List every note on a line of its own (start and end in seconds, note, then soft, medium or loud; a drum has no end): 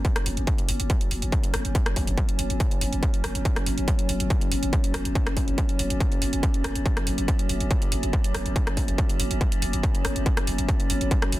0.00 11.40 F#3 medium
0.00 11.40 C#4 medium
0.05 kick loud
0.05 closed hi-hat medium
0.16 cross-stick medium
0.16 closed hi-hat medium
0.26 0.37 F#1 loud
0.26 open hi-hat loud
0.37 0.47 F#1 medium
0.37 closed hi-hat medium
0.47 kick loud
0.47 closed hi-hat medium
0.58 closed hi-hat medium
0.69 0.79 F#1 loud
0.69 open hi-hat loud
0.80 0.90 F#1 medium
0.80 closed hi-hat medium
0.90 kick loud
0.90 closed hi-hat medium
1.01 closed hi-hat medium
1.11 1.22 F#1 loud
1.11 open hi-hat loud
1.22 1.32 F#1 medium
1.22 closed hi-hat medium
1.32 kick loud
1.32 closed hi-hat medium
1.44 closed hi-hat medium
1.54 1.64 F#1 loud
1.54 cross-stick medium
1.54 open hi-hat loud
1.65 1.75 F#1 medium
1.65 closed hi-hat medium
1.75 kick loud
1.75 closed hi-hat medium
1.86 cross-stick medium
1.86 closed hi-hat medium
1.96 2.07 F#1 loud
1.96 kick medium
1.96 open hi-hat loud
2.07 2.17 F#1 medium
2.07 closed hi-hat medium
2.18 kick loud
2.18 closed hi-hat medium
2.29 closed hi-hat medium
2.39 2.49 F#1 loud
2.39 open hi-hat loud
2.50 2.60 F#1 medium
2.50 closed hi-hat medium
2.60 kick loud
2.60 closed hi-hat medium
2.71 closed hi-hat medium
2.81 2.92 F#1 loud
2.81 open hi-hat loud
2.92 3.02 F#1 medium
2.92 closed hi-hat medium
3.03 kick loud
3.03 closed hi-hat medium
3.14 closed hi-hat medium
3.24 3.34 F#1 loud
3.24 cross-stick medium
3.24 open hi-hat loud
3.35 3.45 F#1 medium
3.35 closed hi-hat medium
3.45 kick loud
3.45 closed hi-hat medium
3.56 cross-stick medium
3.56 closed hi-hat soft
3.66 3.77 F#1 loud
3.66 open hi-hat loud
3.78 3.88 F#1 medium
3.78 closed hi-hat medium
3.88 kick loud
3.88 closed hi-hat medium
3.99 closed hi-hat soft
4.09 4.20 F#1 loud
4.09 open hi-hat loud
4.20 4.30 F#1 medium
4.20 closed hi-hat medium
4.30 kick loud
4.30 closed hi-hat medium
4.41 closed hi-hat medium
4.52 4.62 F#1 loud
4.52 open hi-hat loud
4.63 4.73 F#1 medium
4.63 closed hi-hat medium
4.73 kick loud
4.73 closed hi-hat medium
4.84 closed hi-hat medium
4.94 5.05 F#1 loud
4.94 cross-stick loud
4.94 open hi-hat loud
5.05 5.15 F#1 medium
5.05 closed hi-hat medium
5.15 kick loud
5.15 closed hi-hat medium
5.26 cross-stick medium
5.26 closed hi-hat soft
5.37 5.47 F#1 loud
5.37 kick medium
5.37 open hi-hat loud
5.48 5.58 F#1 medium
5.48 closed hi-hat medium
5.58 kick loud
5.58 closed hi-hat medium
5.69 closed hi-hat soft
5.79 5.90 F#1 loud
5.79 open hi-hat loud
5.90 6.00 F#1 medium
5.90 closed hi-hat soft
6.00 kick loud
6.00 closed hi-hat medium
6.12 closed hi-hat soft
6.22 6.32 F#1 loud
6.22 open hi-hat loud
6.33 6.43 F#1 medium
6.33 closed hi-hat soft
6.43 kick loud
6.43 closed hi-hat medium
6.54 closed hi-hat medium
6.64 6.75 F#1 loud
6.64 cross-stick loud
6.64 open hi-hat loud
6.75 6.85 F#1 medium
6.75 closed hi-hat soft
6.86 kick loud
6.86 closed hi-hat medium
6.97 cross-stick medium
6.97 closed hi-hat soft
7.07 7.17 F#1 loud
7.07 open hi-hat loud
7.18 7.28 F#1 medium
7.18 closed hi-hat soft
7.28 kick loud
7.28 closed hi-hat medium
7.39 closed hi-hat soft
7.49 7.60 F#1 loud
7.49 open hi-hat loud
7.60 7.70 F#1 medium
7.60 closed hi-hat soft
7.71 kick loud
7.71 closed hi-hat medium
7.82 closed hi-hat medium
7.92 8.02 F#1 loud
7.92 open hi-hat loud
8.03 8.13 F#1 medium
8.03 closed hi-hat soft
8.13 kick loud
8.13 closed hi-hat medium
8.24 closed hi-hat medium
8.34 8.45 F#1 loud
8.34 cross-stick medium
8.34 open hi-hat loud
8.46 8.56 F#1 medium
8.46 closed hi-hat medium
8.56 kick loud
8.56 closed hi-hat medium
8.67 cross-stick medium
8.67 closed hi-hat soft
8.77 8.88 F#1 loud
8.77 kick medium
8.77 open hi-hat loud
8.88 8.98 F#1 medium
8.88 closed hi-hat medium
8.98 kick loud
8.98 closed hi-hat medium
9.09 closed hi-hat soft
9.20 9.30 F#1 loud
9.20 open hi-hat loud
9.31 9.41 F#1 medium
9.31 closed hi-hat soft
9.41 kick loud
9.41 closed hi-hat medium
9.52 closed hi-hat medium
9.62 9.73 F#1 loud
9.62 open hi-hat loud
9.73 9.83 F#1 medium
9.73 closed hi-hat soft
9.83 kick loud
9.83 closed hi-hat medium
9.95 closed hi-hat medium
10.05 10.15 F#1 loud
10.05 cross-stick medium
10.05 open hi-hat loud
10.16 10.26 F#1 medium
10.16 closed hi-hat medium
10.26 kick loud
10.26 closed hi-hat medium
10.37 cross-stick medium
10.37 closed hi-hat medium
10.47 10.58 F#1 loud
10.47 open hi-hat loud
10.58 10.68 F#1 medium
10.58 closed hi-hat medium
10.69 kick loud
10.69 closed hi-hat medium
10.80 closed hi-hat medium
10.90 11.00 F#1 loud
10.90 open hi-hat loud
11.01 11.11 F#1 medium
11.01 closed hi-hat medium
11.11 kick loud
11.11 closed hi-hat medium
11.22 cross-stick medium
11.22 closed hi-hat medium
11.32 11.40 F#1 loud
11.32 open hi-hat loud